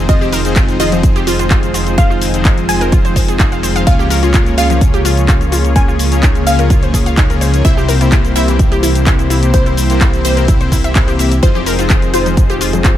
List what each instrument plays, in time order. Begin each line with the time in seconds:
Already playing: analog synth bass F1, analog synth pad D#3 F3 G#3 C4 F4
0.09 supersaw synth F3 C4 D#4 G#4 C5, synth arpeggio sound F4, synth pluck D#5, kick, closed hi-hat, shaker
0.21 synth arpeggio sound G4, shaker
0.32 synth arpeggio sound A#4, open hi-hat, shaker
0.45 supersaw synth F3 C4 D#4 G#4 C5, closed hi-hat, shaker
0.56 synth arpeggio sound F4, kick, clap, closed hi-hat, shaker
0.69 closed hi-hat, shaker
0.80 supersaw synth F3 C4 D#4 G#4 C5, synth arpeggio sound F4, synth pluck D#5, open hi-hat, shaker
0.92 synth arpeggio sound F3, closed hi-hat, shaker
1.03 kick, closed hi-hat, shaker
1.16 synth arpeggio sound G4, closed hi-hat, shaker
1.27 synth arpeggio sound F4, open hi-hat, shaker
1.39 synth arpeggio sound F4, closed hi-hat, shaker
1.51 synth arpeggio sound F4, kick, clap, closed hi-hat, shaker
1.63 closed hi-hat, shaker
1.74 synth arpeggio sound F4, open hi-hat, shaker
1.87 closed hi-hat, shaker
1.98 supersaw synth C4 D#4 G#4 C5, synth arpeggio sound F4, synth pluck F5, kick, closed hi-hat, shaker
2.10 synth arpeggio sound F4, shaker
2.22 open hi-hat, shaker
2.34 supersaw synth F3 C4 D#4 G#4 C5, closed hi-hat, shaker
2.45 synth arpeggio sound D#4, kick, clap, closed hi-hat, shaker
2.58 closed hi-hat, shaker
2.69 supersaw synth F3 C4 D#4 G#4 C5, synth pluck G#5, open hi-hat, shaker
2.81 synth arpeggio sound A#4, closed hi-hat, shaker
2.92 synth arpeggio sound F4, kick, closed hi-hat, shaker
3.05 synth arpeggio sound C5, closed hi-hat, shaker
3.16 synth arpeggio sound C5, kick, open hi-hat, shaker
3.28 synth arpeggio sound G#4, closed hi-hat, shaker
3.40 synth arpeggio sound G#4, kick, clap, closed hi-hat, shaker
3.52 synth arpeggio sound F5, closed hi-hat, shaker
3.63 synth arpeggio sound C5, open hi-hat, shaker
3.76 synth arpeggio sound F5, closed hi-hat, shaker
3.87 analog synth bass C#2, analog synth pad C#3 A#3, supersaw synth C#3 A#3 C#4 F4 G#4 C#5, synth arpeggio sound F4, synth pluck F5, kick, closed hi-hat, shaker
3.99 synth arpeggio sound G4, shaker
4.10 synth arpeggio sound A#4, open hi-hat, shaker
4.23 supersaw synth C#3 A#3 C#4 F4 G#4 C#5, synth arpeggio sound F4, closed hi-hat, shaker
4.34 synth arpeggio sound F4, kick, clap, closed hi-hat, shaker
4.46 closed hi-hat, shaker
4.58 supersaw synth C#3 A#3 C#4 F4 G#4 C#5, synth arpeggio sound F4, synth pluck F5, open hi-hat, shaker
4.70 synth arpeggio sound F3, closed hi-hat, shaker
4.81 kick, closed hi-hat, shaker
4.94 synth arpeggio sound G4, closed hi-hat, shaker
5.05 synth arpeggio sound F4, open hi-hat, shaker
5.17 closed hi-hat, shaker
5.28 synth arpeggio sound F4, kick, clap, closed hi-hat, shaker
5.41 closed hi-hat, shaker
5.52 synth arpeggio sound F4, open hi-hat, shaker
5.65 closed hi-hat, shaker
5.76 supersaw synth C#3 A#3 C#4 F4 G#4 C#5, synth arpeggio sound F4, synth pluck G#5, kick, closed hi-hat, shaker
5.88 synth arpeggio sound F4, shaker
5.99 open hi-hat, shaker
6.12 supersaw synth C#3 A#3 C#4 F4 G#4 C#5, closed hi-hat, shaker
6.23 synth arpeggio sound D#4, kick, clap, closed hi-hat, shaker
6.35 closed hi-hat, shaker
6.47 supersaw synth C#3 A#3 C#4 F4 G#4 C#5, synth pluck F5, open hi-hat, shaker
6.59 synth arpeggio sound A#4, closed hi-hat, shaker
6.70 synth arpeggio sound F4, kick, closed hi-hat, shaker
6.83 synth arpeggio sound C5, closed hi-hat, shaker
6.94 synth arpeggio sound G#4, kick, open hi-hat, shaker
7.06 synth arpeggio sound F5, closed hi-hat, shaker
7.17 synth arpeggio sound D#4, kick, clap, closed hi-hat, shaker
7.30 synth arpeggio sound A#4, closed hi-hat, shaker
7.41 synth arpeggio sound C5, open hi-hat, shaker
7.54 closed hi-hat, shaker
7.65 analog synth bass C2, analog synth pad C3 E3 G3 E4, supersaw synth C3 A#3 C4 G4 C5, synth arpeggio sound E4, synth pluck E5, kick, closed hi-hat, shaker
7.77 synth arpeggio sound G4, shaker
7.88 synth arpeggio sound A#4, open hi-hat, shaker
8.01 supersaw synth C3 A#3 C4 E4 G4 C5, synth arpeggio sound E4, closed hi-hat, shaker
8.12 synth arpeggio sound E4, kick, clap, closed hi-hat, shaker
8.25 closed hi-hat, shaker
8.36 supersaw synth C3 A#3 C4 E4 G4 C5, synth arpeggio sound E4, synth pluck E5, open hi-hat, shaker
8.48 synth arpeggio sound E3, closed hi-hat, shaker
8.59 kick, closed hi-hat, shaker
8.72 synth arpeggio sound G4, closed hi-hat, shaker
8.83 synth arpeggio sound E4, open hi-hat, shaker
8.95 closed hi-hat, shaker
9.07 synth arpeggio sound E4, kick, clap, closed hi-hat, shaker
9.19 closed hi-hat, shaker
9.30 synth arpeggio sound E4, open hi-hat, shaker
9.43 closed hi-hat, shaker
9.54 supersaw synth C3 C4 E4 G4 C5, analog synth pad C4, synth arpeggio sound E4, synth pluck C5, kick, closed hi-hat, shaker
9.66 synth arpeggio sound E4, closed hi-hat, shaker
9.77 open hi-hat, shaker
9.90 supersaw synth C3 A#3 C4 E4 G4 C5, closed hi-hat, shaker
10.01 synth arpeggio sound E4, kick, clap, closed hi-hat, shaker
10.14 closed hi-hat, shaker
10.25 supersaw synth C3 A#3 C4 E4 G4 C5, synth pluck C5, open hi-hat, shaker
10.37 synth arpeggio sound A#4, closed hi-hat, shaker
10.48 synth arpeggio sound E4, kick, closed hi-hat, shaker
10.61 synth arpeggio sound C5, closed hi-hat, shaker
10.72 synth arpeggio sound E4, kick, open hi-hat, shaker
10.84 synth arpeggio sound E5, closed hi-hat, shaker
10.96 synth arpeggio sound E4, kick, clap, closed hi-hat, shaker
11.08 synth arpeggio sound G4, closed hi-hat, shaker
11.19 supersaw synth A#3 C4 E4 G4 E5, synth arpeggio sound E5, open hi-hat, shaker
11.32 closed hi-hat, shaker
11.43 analog synth bass F1, analog synth pad D#3 F3 G#3 F4, supersaw synth F3 C4 D#4 G#4 C5, synth arpeggio sound F4, synth pluck C5, kick, closed hi-hat, shaker
11.55 synth arpeggio sound G4, high bongo, high conga, shaker
11.66 synth arpeggio sound A#4, open hi-hat, shaker
11.79 supersaw synth F3 C4 D#4 G#4 C5, synth arpeggio sound F4, closed hi-hat, shaker
11.90 synth arpeggio sound F4, kick, clap, closed hi-hat, high bongo, shaker
12.02 closed hi-hat, shaker
12.14 supersaw synth F3 C4 D#4 G#4 C5, synth arpeggio sound F4, synth pluck C5, open hi-hat, high bongo, high conga, shaker
12.26 synth arpeggio sound F3, closed hi-hat, shaker
12.37 kick, closed hi-hat, high bongo, shaker
12.50 synth arpeggio sound G4, closed hi-hat, shaker
12.61 synth arpeggio sound F4, open hi-hat, shaker
12.73 closed hi-hat, high bongo, high conga, shaker
12.84 synth arpeggio sound F4, kick, clap, closed hi-hat, shaker